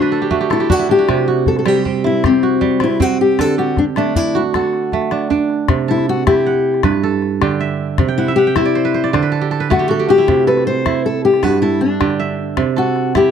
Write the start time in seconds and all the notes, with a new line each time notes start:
Already playing: D3 A3 D4 F#4 A4 C5 D5 E5 F#5
0.02 B4
0.12 A4, calabash click
0.22 G4
0.31 A3 F#4, calabash thump
0.41 G4, calabash click
0.50 E4 A4, calabash click
0.60 G4, calabash click
0.70 D4 F#4, calabash thump
0.79 E4
0.89 D4 G4
0.99 F#4
1.08 C3 G4, calabash thump, calabash click
1.18 calabash click
1.28 F#4
1.46 A4, calabash thump, calabash click
1.56 A4, calabash click
1.66 G3 C4 G4, calabash click
1.85 C4, calabash thump
2.04 E4, calabash click
2.14 calabash click
2.24 C4 G4, calabash thump, calabash click
2.42 F#4, calabash click
2.61 G3, calabash thump
2.71 calabash click
2.80 C4 E4, calabash click
2.91 calabash click
3.00 C4 F#4, calabash thump
3.21 G4
3.39 D3 A4, calabash thump, calabash click
3.58 F#4 G4
3.77 D4, calabash thump, calabash click
3.96 A3 D4, calabash click
4.16 D4 E4, calabash thump
4.35 E4 F#4
4.54 F#4 A4, calabash thump, calabash click
4.64 calabash click
4.73 calabash click
4.92 A3, calabash thump, calabash click
5.02 calabash click
5.11 D4, calabash click
5.30 D4, calabash thump, calabash click
5.50 calabash click
5.68 C3, calabash thump, calabash click
5.88 E4 A4
5.98 calabash click
6.09 F#4
6.27 E4 G4, calabash thump, calabash click
6.46 F#5
6.74 calabash click
6.83 G2 B4, calabash thump, calabash click
7.03 A4
7.22 calabash click
7.41 D3 G4, calabash thump, calabash click
7.51 calabash click
7.61 E5, calabash click
7.98 C3, calabash thump, calabash click
8.08 G5
8.18 E4 F#5
8.27 E5, calabash click
8.36 G4 F#5
8.47 G5
8.56 E4 E5, calabash thump, calabash click
8.65 D5
8.75 C5
8.85 B4
8.94 C5
9.04 D5, calabash click
9.13 D3 C5, calabash thump, calabash click
9.22 B4
9.32 A4
9.41 G4
9.51 A4, calabash click
9.60 B4
9.70 A3 F#4 A4, calabash thump, calabash click
9.79 G4, calabash click
9.89 F#4 A4, calabash click
9.99 G4
10.09 F#4 G4
10.18 E4
10.28 C3, calabash thump, calabash click
10.47 A4 B4
10.57 calabash click
10.67 C5
10.86 E4, calabash thump, calabash click
11.06 A4
11.25 G4
11.34 calabash click
11.43 G2 F#4 B4, calabash thump, calabash click
11.62 E4 A4
11.81 D4, calabash click
12.01 D3 G4, calabash thump, calabash click
12.10 calabash click
12.20 E5, calabash click
12.57 C3, calabash thump, calabash click
12.76 F#4 A4, calabash click
12.96 calabash click
13.15 E4 G4, calabash thump, calabash click